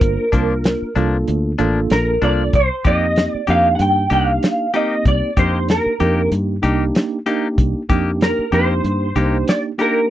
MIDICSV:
0, 0, Header, 1, 7, 480
1, 0, Start_track
1, 0, Tempo, 630915
1, 11, Time_signature, 4, 2, 24, 8
1, 7684, End_track
2, 0, Start_track
2, 0, Title_t, "Clean electric guitar"
2, 0, Program_c, 0, 27
2, 0, Note_on_c, 0, 70, 81
2, 701, Note_off_c, 0, 70, 0
2, 1461, Note_on_c, 0, 70, 68
2, 1700, Note_on_c, 0, 74, 74
2, 1702, Note_off_c, 0, 70, 0
2, 1941, Note_off_c, 0, 74, 0
2, 1943, Note_on_c, 0, 72, 83
2, 2159, Note_off_c, 0, 72, 0
2, 2183, Note_on_c, 0, 75, 91
2, 2533, Note_off_c, 0, 75, 0
2, 2533, Note_on_c, 0, 74, 91
2, 2661, Note_off_c, 0, 74, 0
2, 2664, Note_on_c, 0, 77, 100
2, 2851, Note_off_c, 0, 77, 0
2, 2854, Note_on_c, 0, 78, 64
2, 2896, Note_off_c, 0, 78, 0
2, 2903, Note_on_c, 0, 79, 86
2, 3137, Note_off_c, 0, 79, 0
2, 3140, Note_on_c, 0, 77, 94
2, 3584, Note_off_c, 0, 77, 0
2, 3623, Note_on_c, 0, 75, 85
2, 3860, Note_off_c, 0, 75, 0
2, 3863, Note_on_c, 0, 74, 89
2, 4079, Note_off_c, 0, 74, 0
2, 4101, Note_on_c, 0, 72, 73
2, 4339, Note_off_c, 0, 72, 0
2, 4342, Note_on_c, 0, 70, 68
2, 4785, Note_off_c, 0, 70, 0
2, 6260, Note_on_c, 0, 70, 69
2, 6478, Note_off_c, 0, 70, 0
2, 6499, Note_on_c, 0, 72, 98
2, 7222, Note_on_c, 0, 74, 84
2, 7236, Note_off_c, 0, 72, 0
2, 7285, Note_off_c, 0, 74, 0
2, 7466, Note_on_c, 0, 70, 77
2, 7684, Note_off_c, 0, 70, 0
2, 7684, End_track
3, 0, Start_track
3, 0, Title_t, "Clean electric guitar"
3, 0, Program_c, 1, 27
3, 245, Note_on_c, 1, 62, 60
3, 255, Note_on_c, 1, 58, 55
3, 262, Note_on_c, 1, 53, 59
3, 401, Note_off_c, 1, 62, 0
3, 406, Note_off_c, 1, 58, 0
3, 410, Note_off_c, 1, 53, 0
3, 727, Note_on_c, 1, 62, 64
3, 736, Note_on_c, 1, 58, 66
3, 744, Note_on_c, 1, 53, 55
3, 882, Note_off_c, 1, 62, 0
3, 886, Note_off_c, 1, 58, 0
3, 890, Note_off_c, 1, 53, 0
3, 1206, Note_on_c, 1, 62, 77
3, 1217, Note_on_c, 1, 58, 66
3, 1226, Note_on_c, 1, 53, 54
3, 1362, Note_off_c, 1, 62, 0
3, 1367, Note_off_c, 1, 58, 0
3, 1372, Note_off_c, 1, 53, 0
3, 1687, Note_on_c, 1, 62, 70
3, 1696, Note_on_c, 1, 58, 61
3, 1705, Note_on_c, 1, 53, 52
3, 1842, Note_off_c, 1, 62, 0
3, 1846, Note_off_c, 1, 58, 0
3, 1851, Note_off_c, 1, 53, 0
3, 2165, Note_on_c, 1, 67, 58
3, 2176, Note_on_c, 1, 63, 63
3, 2182, Note_on_c, 1, 58, 51
3, 2320, Note_off_c, 1, 67, 0
3, 2326, Note_off_c, 1, 63, 0
3, 2329, Note_off_c, 1, 58, 0
3, 2642, Note_on_c, 1, 67, 67
3, 2652, Note_on_c, 1, 63, 58
3, 2660, Note_on_c, 1, 58, 54
3, 2799, Note_off_c, 1, 67, 0
3, 2804, Note_off_c, 1, 63, 0
3, 2808, Note_off_c, 1, 58, 0
3, 3120, Note_on_c, 1, 67, 64
3, 3132, Note_on_c, 1, 63, 61
3, 3138, Note_on_c, 1, 58, 46
3, 3278, Note_off_c, 1, 67, 0
3, 3284, Note_off_c, 1, 63, 0
3, 3287, Note_off_c, 1, 58, 0
3, 3604, Note_on_c, 1, 67, 70
3, 3614, Note_on_c, 1, 63, 66
3, 3623, Note_on_c, 1, 58, 57
3, 3760, Note_off_c, 1, 67, 0
3, 3765, Note_off_c, 1, 63, 0
3, 3769, Note_off_c, 1, 58, 0
3, 4086, Note_on_c, 1, 67, 71
3, 4093, Note_on_c, 1, 63, 55
3, 4101, Note_on_c, 1, 58, 51
3, 4241, Note_off_c, 1, 67, 0
3, 4244, Note_off_c, 1, 63, 0
3, 4249, Note_off_c, 1, 58, 0
3, 4567, Note_on_c, 1, 67, 64
3, 4576, Note_on_c, 1, 63, 60
3, 4584, Note_on_c, 1, 58, 52
3, 4721, Note_off_c, 1, 67, 0
3, 4726, Note_off_c, 1, 63, 0
3, 4730, Note_off_c, 1, 58, 0
3, 5044, Note_on_c, 1, 67, 68
3, 5055, Note_on_c, 1, 63, 68
3, 5062, Note_on_c, 1, 58, 63
3, 5200, Note_off_c, 1, 67, 0
3, 5206, Note_off_c, 1, 63, 0
3, 5209, Note_off_c, 1, 58, 0
3, 5527, Note_on_c, 1, 67, 82
3, 5535, Note_on_c, 1, 63, 72
3, 5542, Note_on_c, 1, 58, 62
3, 5681, Note_off_c, 1, 67, 0
3, 5685, Note_off_c, 1, 63, 0
3, 5689, Note_off_c, 1, 58, 0
3, 6007, Note_on_c, 1, 67, 78
3, 6016, Note_on_c, 1, 63, 65
3, 6024, Note_on_c, 1, 58, 63
3, 6161, Note_off_c, 1, 67, 0
3, 6166, Note_off_c, 1, 63, 0
3, 6170, Note_off_c, 1, 58, 0
3, 6484, Note_on_c, 1, 67, 63
3, 6493, Note_on_c, 1, 63, 60
3, 6501, Note_on_c, 1, 58, 49
3, 6640, Note_off_c, 1, 67, 0
3, 6645, Note_off_c, 1, 63, 0
3, 6649, Note_off_c, 1, 58, 0
3, 6968, Note_on_c, 1, 67, 58
3, 6976, Note_on_c, 1, 63, 54
3, 6983, Note_on_c, 1, 58, 57
3, 7122, Note_off_c, 1, 67, 0
3, 7126, Note_off_c, 1, 63, 0
3, 7130, Note_off_c, 1, 58, 0
3, 7448, Note_on_c, 1, 67, 63
3, 7456, Note_on_c, 1, 63, 64
3, 7464, Note_on_c, 1, 58, 64
3, 7602, Note_off_c, 1, 67, 0
3, 7606, Note_off_c, 1, 63, 0
3, 7610, Note_off_c, 1, 58, 0
3, 7684, End_track
4, 0, Start_track
4, 0, Title_t, "Tine electric piano"
4, 0, Program_c, 2, 4
4, 0, Note_on_c, 2, 58, 72
4, 0, Note_on_c, 2, 62, 63
4, 0, Note_on_c, 2, 65, 61
4, 0, Note_on_c, 2, 72, 74
4, 186, Note_off_c, 2, 58, 0
4, 187, Note_off_c, 2, 62, 0
4, 188, Note_off_c, 2, 65, 0
4, 189, Note_off_c, 2, 72, 0
4, 249, Note_on_c, 2, 58, 63
4, 251, Note_on_c, 2, 62, 58
4, 253, Note_on_c, 2, 65, 54
4, 255, Note_on_c, 2, 70, 63
4, 666, Note_off_c, 2, 58, 0
4, 667, Note_off_c, 2, 62, 0
4, 669, Note_off_c, 2, 65, 0
4, 670, Note_off_c, 2, 70, 0
4, 730, Note_on_c, 2, 58, 75
4, 732, Note_on_c, 2, 62, 69
4, 734, Note_on_c, 2, 65, 70
4, 739, Note_on_c, 2, 69, 79
4, 1147, Note_off_c, 2, 58, 0
4, 1148, Note_off_c, 2, 62, 0
4, 1149, Note_off_c, 2, 65, 0
4, 1151, Note_off_c, 2, 69, 0
4, 1207, Note_on_c, 2, 58, 85
4, 1208, Note_on_c, 2, 62, 85
4, 1209, Note_on_c, 2, 65, 80
4, 1214, Note_on_c, 2, 69, 96
4, 1625, Note_off_c, 2, 58, 0
4, 1626, Note_off_c, 2, 62, 0
4, 1626, Note_off_c, 2, 65, 0
4, 1628, Note_off_c, 2, 69, 0
4, 1689, Note_on_c, 2, 58, 61
4, 1692, Note_on_c, 2, 62, 66
4, 1694, Note_on_c, 2, 65, 60
4, 1697, Note_on_c, 2, 69, 65
4, 1929, Note_off_c, 2, 58, 0
4, 1930, Note_off_c, 2, 62, 0
4, 1931, Note_off_c, 2, 65, 0
4, 1933, Note_off_c, 2, 69, 0
4, 2169, Note_on_c, 2, 58, 66
4, 2172, Note_on_c, 2, 60, 57
4, 2175, Note_on_c, 2, 63, 60
4, 2175, Note_on_c, 2, 67, 71
4, 2586, Note_off_c, 2, 58, 0
4, 2587, Note_off_c, 2, 60, 0
4, 2589, Note_off_c, 2, 63, 0
4, 2589, Note_off_c, 2, 67, 0
4, 2648, Note_on_c, 2, 58, 75
4, 2651, Note_on_c, 2, 62, 65
4, 2652, Note_on_c, 2, 63, 64
4, 2655, Note_on_c, 2, 67, 74
4, 3065, Note_off_c, 2, 58, 0
4, 3067, Note_off_c, 2, 62, 0
4, 3067, Note_off_c, 2, 63, 0
4, 3069, Note_off_c, 2, 67, 0
4, 3127, Note_on_c, 2, 58, 72
4, 3127, Note_on_c, 2, 62, 73
4, 3129, Note_on_c, 2, 63, 70
4, 3131, Note_on_c, 2, 67, 74
4, 3545, Note_off_c, 2, 58, 0
4, 3545, Note_off_c, 2, 62, 0
4, 3546, Note_off_c, 2, 63, 0
4, 3547, Note_off_c, 2, 67, 0
4, 3605, Note_on_c, 2, 58, 71
4, 3606, Note_on_c, 2, 60, 63
4, 3610, Note_on_c, 2, 63, 63
4, 3611, Note_on_c, 2, 67, 71
4, 4024, Note_off_c, 2, 58, 0
4, 4024, Note_off_c, 2, 60, 0
4, 4026, Note_off_c, 2, 63, 0
4, 4027, Note_off_c, 2, 67, 0
4, 4084, Note_on_c, 2, 58, 61
4, 4086, Note_on_c, 2, 62, 52
4, 4089, Note_on_c, 2, 63, 54
4, 4091, Note_on_c, 2, 67, 71
4, 4503, Note_off_c, 2, 58, 0
4, 4504, Note_off_c, 2, 62, 0
4, 4506, Note_off_c, 2, 63, 0
4, 4507, Note_off_c, 2, 67, 0
4, 4564, Note_on_c, 2, 58, 68
4, 4565, Note_on_c, 2, 62, 57
4, 4568, Note_on_c, 2, 63, 63
4, 4570, Note_on_c, 2, 67, 74
4, 4983, Note_off_c, 2, 58, 0
4, 4984, Note_off_c, 2, 62, 0
4, 4985, Note_off_c, 2, 63, 0
4, 4986, Note_off_c, 2, 67, 0
4, 5038, Note_on_c, 2, 58, 90
4, 5039, Note_on_c, 2, 62, 85
4, 5043, Note_on_c, 2, 63, 90
4, 5044, Note_on_c, 2, 67, 104
4, 5461, Note_off_c, 2, 58, 0
4, 5461, Note_off_c, 2, 62, 0
4, 5463, Note_off_c, 2, 63, 0
4, 5464, Note_off_c, 2, 67, 0
4, 5521, Note_on_c, 2, 58, 79
4, 5525, Note_on_c, 2, 62, 70
4, 5528, Note_on_c, 2, 63, 74
4, 5529, Note_on_c, 2, 67, 82
4, 5942, Note_off_c, 2, 58, 0
4, 5944, Note_off_c, 2, 62, 0
4, 5945, Note_off_c, 2, 63, 0
4, 5946, Note_off_c, 2, 67, 0
4, 6002, Note_on_c, 2, 58, 81
4, 6005, Note_on_c, 2, 62, 74
4, 6007, Note_on_c, 2, 63, 68
4, 6008, Note_on_c, 2, 67, 100
4, 6423, Note_off_c, 2, 58, 0
4, 6424, Note_off_c, 2, 62, 0
4, 6425, Note_off_c, 2, 63, 0
4, 6426, Note_off_c, 2, 67, 0
4, 6485, Note_on_c, 2, 58, 69
4, 6486, Note_on_c, 2, 62, 61
4, 6488, Note_on_c, 2, 63, 62
4, 6490, Note_on_c, 2, 67, 80
4, 6904, Note_off_c, 2, 58, 0
4, 6905, Note_off_c, 2, 62, 0
4, 6906, Note_off_c, 2, 63, 0
4, 6907, Note_off_c, 2, 67, 0
4, 6967, Note_on_c, 2, 58, 74
4, 6970, Note_on_c, 2, 62, 69
4, 6972, Note_on_c, 2, 63, 74
4, 6972, Note_on_c, 2, 67, 83
4, 7385, Note_off_c, 2, 58, 0
4, 7387, Note_off_c, 2, 62, 0
4, 7388, Note_off_c, 2, 63, 0
4, 7388, Note_off_c, 2, 67, 0
4, 7444, Note_on_c, 2, 58, 77
4, 7444, Note_on_c, 2, 62, 64
4, 7447, Note_on_c, 2, 63, 62
4, 7449, Note_on_c, 2, 67, 74
4, 7684, Note_off_c, 2, 58, 0
4, 7684, Note_off_c, 2, 62, 0
4, 7684, Note_off_c, 2, 63, 0
4, 7684, Note_off_c, 2, 67, 0
4, 7684, End_track
5, 0, Start_track
5, 0, Title_t, "Fingered electric bass"
5, 0, Program_c, 3, 33
5, 9, Note_on_c, 3, 31, 102
5, 123, Note_off_c, 3, 31, 0
5, 250, Note_on_c, 3, 36, 69
5, 567, Note_off_c, 3, 36, 0
5, 731, Note_on_c, 3, 36, 97
5, 935, Note_off_c, 3, 36, 0
5, 975, Note_on_c, 3, 38, 99
5, 1177, Note_off_c, 3, 38, 0
5, 1212, Note_on_c, 3, 33, 74
5, 1427, Note_off_c, 3, 33, 0
5, 1452, Note_on_c, 3, 34, 73
5, 1667, Note_off_c, 3, 34, 0
5, 1689, Note_on_c, 3, 36, 75
5, 1905, Note_off_c, 3, 36, 0
5, 1930, Note_on_c, 3, 36, 90
5, 2042, Note_off_c, 3, 36, 0
5, 2168, Note_on_c, 3, 41, 70
5, 2486, Note_off_c, 3, 41, 0
5, 2650, Note_on_c, 3, 41, 85
5, 2854, Note_off_c, 3, 41, 0
5, 2887, Note_on_c, 3, 43, 92
5, 3093, Note_off_c, 3, 43, 0
5, 3126, Note_on_c, 3, 36, 87
5, 3332, Note_off_c, 3, 36, 0
5, 3846, Note_on_c, 3, 36, 108
5, 3960, Note_off_c, 3, 36, 0
5, 4086, Note_on_c, 3, 41, 83
5, 4405, Note_off_c, 3, 41, 0
5, 4569, Note_on_c, 3, 41, 101
5, 4773, Note_off_c, 3, 41, 0
5, 4804, Note_on_c, 3, 43, 90
5, 5011, Note_off_c, 3, 43, 0
5, 5046, Note_on_c, 3, 36, 83
5, 5252, Note_off_c, 3, 36, 0
5, 5766, Note_on_c, 3, 36, 104
5, 5880, Note_off_c, 3, 36, 0
5, 6008, Note_on_c, 3, 41, 70
5, 6326, Note_off_c, 3, 41, 0
5, 6486, Note_on_c, 3, 41, 104
5, 6692, Note_off_c, 3, 41, 0
5, 6728, Note_on_c, 3, 43, 100
5, 6933, Note_off_c, 3, 43, 0
5, 6965, Note_on_c, 3, 36, 92
5, 7172, Note_off_c, 3, 36, 0
5, 7684, End_track
6, 0, Start_track
6, 0, Title_t, "Muted fingered electric bass strokes"
6, 625, Note_on_c, 9, 29, 37
6, 701, Note_off_c, 9, 29, 0
6, 2544, Note_on_c, 9, 29, 36
6, 2621, Note_off_c, 9, 29, 0
6, 4459, Note_on_c, 9, 29, 39
6, 4535, Note_off_c, 9, 29, 0
6, 6381, Note_on_c, 9, 29, 39
6, 6457, Note_off_c, 9, 29, 0
6, 7684, End_track
7, 0, Start_track
7, 0, Title_t, "Drums"
7, 8, Note_on_c, 9, 42, 88
7, 10, Note_on_c, 9, 36, 100
7, 85, Note_off_c, 9, 42, 0
7, 86, Note_off_c, 9, 36, 0
7, 249, Note_on_c, 9, 36, 72
7, 249, Note_on_c, 9, 42, 65
7, 325, Note_off_c, 9, 42, 0
7, 326, Note_off_c, 9, 36, 0
7, 488, Note_on_c, 9, 42, 83
7, 498, Note_on_c, 9, 38, 106
7, 564, Note_off_c, 9, 42, 0
7, 574, Note_off_c, 9, 38, 0
7, 731, Note_on_c, 9, 42, 56
7, 807, Note_off_c, 9, 42, 0
7, 971, Note_on_c, 9, 42, 76
7, 1047, Note_off_c, 9, 42, 0
7, 1209, Note_on_c, 9, 42, 48
7, 1285, Note_off_c, 9, 42, 0
7, 1447, Note_on_c, 9, 42, 69
7, 1457, Note_on_c, 9, 38, 96
7, 1523, Note_off_c, 9, 42, 0
7, 1533, Note_off_c, 9, 38, 0
7, 1688, Note_on_c, 9, 42, 55
7, 1764, Note_off_c, 9, 42, 0
7, 1926, Note_on_c, 9, 42, 75
7, 1928, Note_on_c, 9, 36, 102
7, 2002, Note_off_c, 9, 42, 0
7, 2005, Note_off_c, 9, 36, 0
7, 2167, Note_on_c, 9, 42, 55
7, 2168, Note_on_c, 9, 36, 86
7, 2243, Note_off_c, 9, 42, 0
7, 2244, Note_off_c, 9, 36, 0
7, 2406, Note_on_c, 9, 42, 80
7, 2416, Note_on_c, 9, 38, 98
7, 2482, Note_off_c, 9, 42, 0
7, 2492, Note_off_c, 9, 38, 0
7, 2647, Note_on_c, 9, 42, 62
7, 2723, Note_off_c, 9, 42, 0
7, 2886, Note_on_c, 9, 42, 75
7, 2962, Note_off_c, 9, 42, 0
7, 3125, Note_on_c, 9, 42, 55
7, 3201, Note_off_c, 9, 42, 0
7, 3368, Note_on_c, 9, 42, 68
7, 3378, Note_on_c, 9, 38, 94
7, 3444, Note_off_c, 9, 42, 0
7, 3454, Note_off_c, 9, 38, 0
7, 3605, Note_on_c, 9, 42, 63
7, 3681, Note_off_c, 9, 42, 0
7, 3846, Note_on_c, 9, 36, 91
7, 3847, Note_on_c, 9, 42, 78
7, 3922, Note_off_c, 9, 36, 0
7, 3923, Note_off_c, 9, 42, 0
7, 4085, Note_on_c, 9, 36, 85
7, 4086, Note_on_c, 9, 42, 65
7, 4161, Note_off_c, 9, 36, 0
7, 4162, Note_off_c, 9, 42, 0
7, 4326, Note_on_c, 9, 42, 79
7, 4336, Note_on_c, 9, 38, 109
7, 4402, Note_off_c, 9, 42, 0
7, 4412, Note_off_c, 9, 38, 0
7, 4564, Note_on_c, 9, 42, 63
7, 4640, Note_off_c, 9, 42, 0
7, 4806, Note_on_c, 9, 42, 76
7, 4882, Note_off_c, 9, 42, 0
7, 5047, Note_on_c, 9, 42, 54
7, 5123, Note_off_c, 9, 42, 0
7, 5288, Note_on_c, 9, 42, 75
7, 5298, Note_on_c, 9, 38, 102
7, 5364, Note_off_c, 9, 42, 0
7, 5374, Note_off_c, 9, 38, 0
7, 5527, Note_on_c, 9, 42, 60
7, 5603, Note_off_c, 9, 42, 0
7, 5767, Note_on_c, 9, 36, 102
7, 5768, Note_on_c, 9, 42, 72
7, 5843, Note_off_c, 9, 36, 0
7, 5844, Note_off_c, 9, 42, 0
7, 6006, Note_on_c, 9, 36, 79
7, 6009, Note_on_c, 9, 42, 57
7, 6083, Note_off_c, 9, 36, 0
7, 6085, Note_off_c, 9, 42, 0
7, 6247, Note_on_c, 9, 42, 70
7, 6257, Note_on_c, 9, 38, 109
7, 6323, Note_off_c, 9, 42, 0
7, 6333, Note_off_c, 9, 38, 0
7, 6490, Note_on_c, 9, 42, 57
7, 6566, Note_off_c, 9, 42, 0
7, 6730, Note_on_c, 9, 42, 72
7, 6806, Note_off_c, 9, 42, 0
7, 6969, Note_on_c, 9, 42, 52
7, 7046, Note_off_c, 9, 42, 0
7, 7210, Note_on_c, 9, 42, 71
7, 7220, Note_on_c, 9, 38, 102
7, 7286, Note_off_c, 9, 42, 0
7, 7296, Note_off_c, 9, 38, 0
7, 7451, Note_on_c, 9, 42, 64
7, 7527, Note_off_c, 9, 42, 0
7, 7684, End_track
0, 0, End_of_file